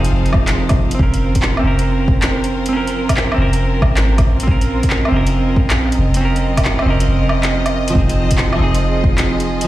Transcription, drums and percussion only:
0.04 closed hi-hat
0.26 closed hi-hat
0.33 kick, low woodblock
0.48 clap, closed hi-hat
0.69 kick, closed hi-hat, low woodblock
0.91 closed hi-hat
0.99 kick
1.14 closed hi-hat
1.35 kick, closed hi-hat
1.42 clap
1.57 low woodblock
1.79 closed hi-hat
2.08 kick
2.22 clap, closed hi-hat
2.44 closed hi-hat
2.66 closed hi-hat
2.87 closed hi-hat
3.09 kick, closed hi-hat, low woodblock
3.17 clap
3.32 low woodblock
3.53 closed hi-hat
3.82 kick, low woodblock
3.97 clap, closed hi-hat
4.18 kick, closed hi-hat, low woodblock
4.40 closed hi-hat
4.48 kick
4.61 closed hi-hat
4.83 kick, closed hi-hat
4.90 clap
5.05 low woodblock
5.27 closed hi-hat
5.56 kick
5.70 clap, closed hi-hat
5.92 closed hi-hat
6.14 closed hi-hat
6.36 closed hi-hat
6.57 kick, closed hi-hat, low woodblock
6.65 clap
6.79 low woodblock
7.00 closed hi-hat
7.29 low woodblock
7.43 clap, closed hi-hat
7.66 closed hi-hat, low woodblock
7.88 closed hi-hat
7.95 kick
8.09 closed hi-hat
8.31 kick, closed hi-hat
8.38 clap
8.53 low woodblock
8.74 closed hi-hat
9.04 kick
9.18 clap, closed hi-hat
9.40 closed hi-hat
9.61 closed hi-hat

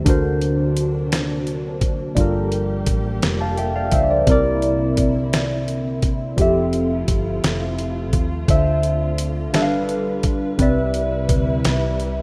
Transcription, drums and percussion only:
0.06 kick, closed hi-hat
0.41 closed hi-hat
0.77 closed hi-hat
1.12 snare, closed hi-hat
1.47 closed hi-hat
1.81 kick, closed hi-hat
2.17 kick, closed hi-hat
2.52 closed hi-hat
2.86 kick, closed hi-hat
3.22 snare, closed hi-hat
3.57 closed hi-hat
3.92 kick, closed hi-hat
4.27 kick, closed hi-hat
4.62 closed hi-hat
4.97 kick, closed hi-hat
5.33 snare, closed hi-hat
5.68 closed hi-hat
6.02 kick, closed hi-hat
6.38 kick, closed hi-hat
6.73 closed hi-hat
7.08 kick, closed hi-hat
7.44 snare, closed hi-hat
7.79 closed hi-hat
8.13 kick, closed hi-hat
8.48 kick, closed hi-hat
8.83 closed hi-hat
9.18 closed hi-hat
9.54 snare, closed hi-hat
9.89 closed hi-hat
10.23 kick, closed hi-hat
10.59 kick, closed hi-hat
10.94 closed hi-hat
11.29 kick, closed hi-hat
11.65 snare, closed hi-hat
12.00 closed hi-hat

